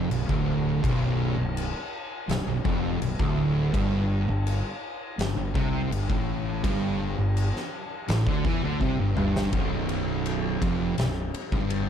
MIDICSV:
0, 0, Header, 1, 5, 480
1, 0, Start_track
1, 0, Tempo, 724638
1, 554, Time_signature, 4, 2, 24, 8
1, 7878, End_track
2, 0, Start_track
2, 0, Title_t, "Distorted electric guitar"
2, 0, Program_c, 0, 30
2, 64, Note_on_c, 0, 35, 76
2, 184, Note_off_c, 0, 35, 0
2, 186, Note_on_c, 0, 38, 116
2, 543, Note_off_c, 0, 38, 0
2, 550, Note_on_c, 0, 35, 104
2, 904, Note_off_c, 0, 35, 0
2, 912, Note_on_c, 0, 35, 80
2, 1105, Note_off_c, 0, 35, 0
2, 1514, Note_on_c, 0, 35, 74
2, 1624, Note_off_c, 0, 35, 0
2, 1632, Note_on_c, 0, 35, 78
2, 1748, Note_off_c, 0, 35, 0
2, 1750, Note_on_c, 0, 41, 115
2, 1986, Note_off_c, 0, 41, 0
2, 1994, Note_on_c, 0, 35, 76
2, 2109, Note_off_c, 0, 35, 0
2, 2112, Note_on_c, 0, 38, 113
2, 2467, Note_off_c, 0, 38, 0
2, 2472, Note_on_c, 0, 43, 104
2, 2823, Note_off_c, 0, 43, 0
2, 2831, Note_on_c, 0, 43, 72
2, 3025, Note_off_c, 0, 43, 0
2, 3436, Note_on_c, 0, 43, 76
2, 3550, Note_off_c, 0, 43, 0
2, 3558, Note_on_c, 0, 43, 69
2, 3669, Note_on_c, 0, 48, 105
2, 3677, Note_off_c, 0, 43, 0
2, 3905, Note_off_c, 0, 48, 0
2, 3914, Note_on_c, 0, 43, 70
2, 4029, Note_off_c, 0, 43, 0
2, 4031, Note_on_c, 0, 45, 111
2, 4386, Note_off_c, 0, 45, 0
2, 4394, Note_on_c, 0, 43, 105
2, 4747, Note_off_c, 0, 43, 0
2, 4758, Note_on_c, 0, 43, 77
2, 4949, Note_off_c, 0, 43, 0
2, 5356, Note_on_c, 0, 45, 92
2, 5468, Note_off_c, 0, 45, 0
2, 5475, Note_on_c, 0, 50, 95
2, 5587, Note_off_c, 0, 50, 0
2, 5593, Note_on_c, 0, 52, 108
2, 5707, Note_off_c, 0, 52, 0
2, 5715, Note_on_c, 0, 50, 101
2, 5827, Note_off_c, 0, 50, 0
2, 5830, Note_on_c, 0, 48, 108
2, 5945, Note_off_c, 0, 48, 0
2, 5952, Note_on_c, 0, 43, 101
2, 6061, Note_off_c, 0, 43, 0
2, 6069, Note_on_c, 0, 43, 115
2, 6304, Note_off_c, 0, 43, 0
2, 6308, Note_on_c, 0, 35, 108
2, 7023, Note_off_c, 0, 35, 0
2, 7031, Note_on_c, 0, 41, 104
2, 7264, Note_off_c, 0, 41, 0
2, 7271, Note_on_c, 0, 35, 68
2, 7463, Note_off_c, 0, 35, 0
2, 7636, Note_on_c, 0, 43, 109
2, 7878, Note_off_c, 0, 43, 0
2, 7878, End_track
3, 0, Start_track
3, 0, Title_t, "Distorted electric guitar"
3, 0, Program_c, 1, 30
3, 0, Note_on_c, 1, 41, 101
3, 68, Note_off_c, 1, 41, 0
3, 7878, End_track
4, 0, Start_track
4, 0, Title_t, "Fingered electric bass"
4, 0, Program_c, 2, 33
4, 79, Note_on_c, 2, 23, 88
4, 188, Note_off_c, 2, 23, 0
4, 193, Note_on_c, 2, 26, 96
4, 528, Note_off_c, 2, 26, 0
4, 554, Note_on_c, 2, 23, 104
4, 889, Note_off_c, 2, 23, 0
4, 916, Note_on_c, 2, 23, 89
4, 1139, Note_off_c, 2, 23, 0
4, 1513, Note_on_c, 2, 23, 86
4, 1626, Note_off_c, 2, 23, 0
4, 1631, Note_on_c, 2, 23, 80
4, 1745, Note_off_c, 2, 23, 0
4, 1756, Note_on_c, 2, 29, 91
4, 1979, Note_off_c, 2, 29, 0
4, 1997, Note_on_c, 2, 23, 84
4, 2108, Note_off_c, 2, 23, 0
4, 2115, Note_on_c, 2, 26, 91
4, 2450, Note_off_c, 2, 26, 0
4, 2479, Note_on_c, 2, 31, 89
4, 2812, Note_off_c, 2, 31, 0
4, 2838, Note_on_c, 2, 31, 83
4, 3060, Note_off_c, 2, 31, 0
4, 3434, Note_on_c, 2, 31, 85
4, 3547, Note_off_c, 2, 31, 0
4, 3553, Note_on_c, 2, 31, 75
4, 3666, Note_off_c, 2, 31, 0
4, 3679, Note_on_c, 2, 36, 88
4, 3901, Note_off_c, 2, 36, 0
4, 3916, Note_on_c, 2, 31, 91
4, 4027, Note_off_c, 2, 31, 0
4, 4037, Note_on_c, 2, 33, 93
4, 4371, Note_off_c, 2, 33, 0
4, 4397, Note_on_c, 2, 31, 88
4, 4731, Note_off_c, 2, 31, 0
4, 4757, Note_on_c, 2, 31, 75
4, 4979, Note_off_c, 2, 31, 0
4, 5358, Note_on_c, 2, 33, 92
4, 5468, Note_off_c, 2, 33, 0
4, 5474, Note_on_c, 2, 38, 99
4, 5586, Note_off_c, 2, 38, 0
4, 5595, Note_on_c, 2, 40, 86
4, 5706, Note_off_c, 2, 40, 0
4, 5721, Note_on_c, 2, 38, 109
4, 5827, Note_off_c, 2, 38, 0
4, 5831, Note_on_c, 2, 36, 99
4, 5944, Note_off_c, 2, 36, 0
4, 5957, Note_on_c, 2, 31, 99
4, 6067, Note_off_c, 2, 31, 0
4, 6078, Note_on_c, 2, 31, 92
4, 6299, Note_off_c, 2, 31, 0
4, 6312, Note_on_c, 2, 23, 103
4, 7006, Note_off_c, 2, 23, 0
4, 7034, Note_on_c, 2, 29, 85
4, 7256, Note_off_c, 2, 29, 0
4, 7277, Note_on_c, 2, 23, 85
4, 7498, Note_off_c, 2, 23, 0
4, 7631, Note_on_c, 2, 31, 103
4, 7878, Note_off_c, 2, 31, 0
4, 7878, End_track
5, 0, Start_track
5, 0, Title_t, "Drums"
5, 74, Note_on_c, 9, 49, 63
5, 140, Note_off_c, 9, 49, 0
5, 194, Note_on_c, 9, 36, 105
5, 260, Note_off_c, 9, 36, 0
5, 555, Note_on_c, 9, 36, 116
5, 561, Note_on_c, 9, 49, 71
5, 622, Note_off_c, 9, 36, 0
5, 627, Note_off_c, 9, 49, 0
5, 1040, Note_on_c, 9, 49, 70
5, 1106, Note_off_c, 9, 49, 0
5, 1519, Note_on_c, 9, 49, 65
5, 1531, Note_on_c, 9, 38, 99
5, 1585, Note_off_c, 9, 49, 0
5, 1597, Note_off_c, 9, 38, 0
5, 1756, Note_on_c, 9, 36, 103
5, 1822, Note_off_c, 9, 36, 0
5, 1998, Note_on_c, 9, 49, 63
5, 2065, Note_off_c, 9, 49, 0
5, 2116, Note_on_c, 9, 36, 116
5, 2183, Note_off_c, 9, 36, 0
5, 2477, Note_on_c, 9, 36, 118
5, 2480, Note_on_c, 9, 49, 63
5, 2543, Note_off_c, 9, 36, 0
5, 2546, Note_off_c, 9, 49, 0
5, 2958, Note_on_c, 9, 49, 60
5, 3024, Note_off_c, 9, 49, 0
5, 3438, Note_on_c, 9, 49, 63
5, 3450, Note_on_c, 9, 38, 106
5, 3504, Note_off_c, 9, 49, 0
5, 3516, Note_off_c, 9, 38, 0
5, 3679, Note_on_c, 9, 36, 123
5, 3745, Note_off_c, 9, 36, 0
5, 3923, Note_on_c, 9, 49, 66
5, 3989, Note_off_c, 9, 49, 0
5, 4038, Note_on_c, 9, 36, 105
5, 4104, Note_off_c, 9, 36, 0
5, 4398, Note_on_c, 9, 36, 111
5, 4401, Note_on_c, 9, 49, 67
5, 4465, Note_off_c, 9, 36, 0
5, 4467, Note_off_c, 9, 49, 0
5, 4879, Note_on_c, 9, 49, 65
5, 4946, Note_off_c, 9, 49, 0
5, 5010, Note_on_c, 9, 38, 34
5, 5076, Note_off_c, 9, 38, 0
5, 5354, Note_on_c, 9, 49, 62
5, 5366, Note_on_c, 9, 38, 114
5, 5421, Note_off_c, 9, 49, 0
5, 5433, Note_off_c, 9, 38, 0
5, 5475, Note_on_c, 9, 36, 106
5, 5542, Note_off_c, 9, 36, 0
5, 5595, Note_on_c, 9, 36, 121
5, 5662, Note_off_c, 9, 36, 0
5, 5835, Note_on_c, 9, 36, 66
5, 5901, Note_off_c, 9, 36, 0
5, 6072, Note_on_c, 9, 45, 96
5, 6138, Note_off_c, 9, 45, 0
5, 6203, Note_on_c, 9, 38, 96
5, 6269, Note_off_c, 9, 38, 0
5, 6310, Note_on_c, 9, 51, 101
5, 6312, Note_on_c, 9, 36, 119
5, 6376, Note_off_c, 9, 51, 0
5, 6378, Note_off_c, 9, 36, 0
5, 6551, Note_on_c, 9, 51, 67
5, 6617, Note_off_c, 9, 51, 0
5, 6794, Note_on_c, 9, 51, 90
5, 6860, Note_off_c, 9, 51, 0
5, 7033, Note_on_c, 9, 36, 111
5, 7035, Note_on_c, 9, 51, 77
5, 7099, Note_off_c, 9, 36, 0
5, 7101, Note_off_c, 9, 51, 0
5, 7272, Note_on_c, 9, 51, 91
5, 7284, Note_on_c, 9, 38, 93
5, 7338, Note_off_c, 9, 51, 0
5, 7350, Note_off_c, 9, 38, 0
5, 7514, Note_on_c, 9, 51, 73
5, 7581, Note_off_c, 9, 51, 0
5, 7633, Note_on_c, 9, 36, 110
5, 7699, Note_off_c, 9, 36, 0
5, 7752, Note_on_c, 9, 51, 103
5, 7819, Note_off_c, 9, 51, 0
5, 7878, End_track
0, 0, End_of_file